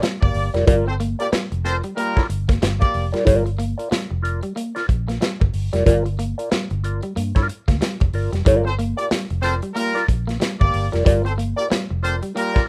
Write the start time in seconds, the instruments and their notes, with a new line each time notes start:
0.02 clean electric guitar G3, snare, closed hi-hat
0.21 fingered electric bass G1, horn section A#3 G4 D5, muted clean electric guitar stroke, kick
0.34 fingered electric bass G1, open hi-hat
0.54 fingered electric bass F1, clean electric guitar G3 F4 A#4 D5, snare, closed hi-hat
0.67 fingered electric bass G1, clean electric guitar G3 F4 A#4 D5, kick, closed hi-hat
0.86 horn section C4 A4 C5, muted clean electric guitar stroke
1.00 clean electric guitar A#3, muted clean electric guitar stroke, closed hi-hat
1.19 horn section A#3 G4 D5, clean electric guitar F4 A#4 D5, closed hi-hat
1.32 clean electric guitar G3, muted clean electric guitar stroke, muted fingered electric bass stroke, snare, closed hi-hat
1.52 fingered electric bass F1, muted clean electric guitar stroke, closed hi-hat
1.64 horn section C4 A4 C5, clean electric guitar F4 A#4 D5, snare, closed hi-hat
1.83 clean electric guitar G3, muted clean electric guitar stroke, closed hi-hat
1.96 horn section G3 F4 A#4, clean electric guitar A#3, muted clean electric guitar stroke, closed hi-hat
2.16 clean electric guitar F4 A#4 D5, kick, snare
2.29 fingered electric bass G1, muted clean electric guitar stroke, closed hi-hat
2.48 clean electric guitar A#3, muted clean electric guitar stroke, kick, snare, closed hi-hat
2.61 fingered electric bass G1, clean electric guitar G3, muted clean electric guitar stroke, snare, closed hi-hat
2.80 horn section A#3 G4 D5, muted clean electric guitar stroke, kick, closed hi-hat
2.94 fingered electric bass F1, open hi-hat
3.12 clean electric guitar G3 F4 A#4 D5, snare, closed hi-hat
3.25 fingered electric bass G1, clean electric guitar G3 F4 A#4 D5, kick, closed hi-hat
3.45 muted clean electric guitar stroke, closed hi-hat
3.58 clean electric guitar A#3, muted clean electric guitar stroke, closed hi-hat
3.78 clean electric guitar F4 A#4 D5, closed hi-hat
3.91 clean electric guitar G3, muted fingered electric bass stroke, snare, closed hi-hat
4.11 fingered electric bass F1, muted clean electric guitar stroke
4.22 clean electric guitar F4 A#4 D5, closed hi-hat
4.42 clean electric guitar G3, muted clean electric guitar stroke, closed hi-hat
4.55 clean electric guitar A#3, muted clean electric guitar stroke, closed hi-hat
4.75 clean electric guitar F4 A#4 D5, snare, closed hi-hat
4.88 fingered electric bass A#1, muted clean electric guitar stroke, kick, closed hi-hat
5.08 clean electric guitar A#3, muted clean electric guitar stroke, snare, closed hi-hat
5.20 clean electric guitar G3, muted clean electric guitar stroke, snare, closed hi-hat
5.40 fingered electric bass G1, muted clean electric guitar stroke, kick
5.54 fingered electric bass G1, open hi-hat
5.73 fingered electric bass F1, clean electric guitar G3 F4 A#4 D5, snare, closed hi-hat
5.86 fingered electric bass G1, clean electric guitar G3 F4 A#4 D5, kick, closed hi-hat
6.05 muted clean electric guitar stroke, closed hi-hat
6.18 clean electric guitar A#3, muted clean electric guitar stroke, closed hi-hat
6.38 clean electric guitar F4 A#4 D5, closed hi-hat
6.51 clean electric guitar G3, muted fingered electric bass stroke, snare, closed hi-hat
6.70 fingered electric bass G1, muted clean electric guitar stroke, closed hi-hat
6.84 clean electric guitar F4 A#4 D5, closed hi-hat
7.02 clean electric guitar G3, muted clean electric guitar stroke, closed hi-hat
7.16 fingered electric bass G2, clean electric guitar A#3, muted clean electric guitar stroke, closed hi-hat
7.35 fingered electric bass G2, clean electric guitar F4 A#4 D5, kick, snare, closed hi-hat
7.48 muted clean electric guitar stroke, closed hi-hat
7.68 fingered electric bass D2, clean electric guitar A#3, muted clean electric guitar stroke, kick, snare, closed hi-hat
7.81 clean electric guitar G3, muted clean electric guitar stroke, snare, closed hi-hat
8.00 fingered electric bass F1, muted clean electric guitar stroke, kick, closed hi-hat
8.13 fingered electric bass G1, clean electric guitar F4 A#4 D5, open hi-hat
8.33 fingered electric bass F1, clean electric guitar G3, muted clean electric guitar stroke, snare, closed hi-hat
8.45 fingered electric bass G1, clean electric guitar G3 F4 A#4 D5, kick, closed hi-hat
8.65 horn section C4 A4 C5, muted clean electric guitar stroke
8.79 clean electric guitar A#3, muted clean electric guitar stroke, closed hi-hat
8.97 horn section A#3 G4 D5, clean electric guitar F4 A#4 D5, closed hi-hat
9.11 clean electric guitar G3, muted fingered electric bass stroke, snare, closed hi-hat
9.30 fingered electric bass F1, muted clean electric guitar stroke, closed hi-hat
9.42 horn section C4 A4 C5, clean electric guitar F4 A#4 D5, snare, closed hi-hat
9.62 clean electric guitar G3, muted clean electric guitar stroke, closed hi-hat
9.74 horn section G3 F4 A#4, clean electric guitar A#3, muted clean electric guitar stroke, closed hi-hat
9.95 clean electric guitar F4 A#4 D5, snare, closed hi-hat
10.08 fingered electric bass A#1, muted clean electric guitar stroke, kick, closed hi-hat
10.27 clean electric guitar A#3, muted clean electric guitar stroke, snare, closed hi-hat
10.40 clean electric guitar G3, muted clean electric guitar stroke, snare, closed hi-hat
10.59 fingered electric bass G1, horn section A#3 G4 D5, muted clean electric guitar stroke, kick
10.73 fingered electric bass G1, open hi-hat
10.92 fingered electric bass F1, clean electric guitar G3 F4 A#4 D5, snare, closed hi-hat
11.05 fingered electric bass G1, clean electric guitar G3 F4 A#4 D5, kick, closed hi-hat
11.24 horn section C4 A4 C5, muted clean electric guitar stroke, closed hi-hat
11.37 clean electric guitar A#3, muted clean electric guitar stroke, closed hi-hat
11.56 horn section A#3 G4 D5, clean electric guitar F4 A#4 D5, closed hi-hat
11.70 clean electric guitar G3, muted clean electric guitar stroke, muted fingered electric bass stroke, snare, closed hi-hat
11.90 fingered electric bass F1, muted clean electric guitar stroke
12.03 horn section C4 A4 C5, clean electric guitar F4 A#4 D5, closed hi-hat
12.22 clean electric guitar G3, muted clean electric guitar stroke, closed hi-hat
12.35 horn section G3 F4 A#4, clean electric guitar A#3, muted clean electric guitar stroke, closed hi-hat
12.54 clean electric guitar F4 A#4 D5, kick, snare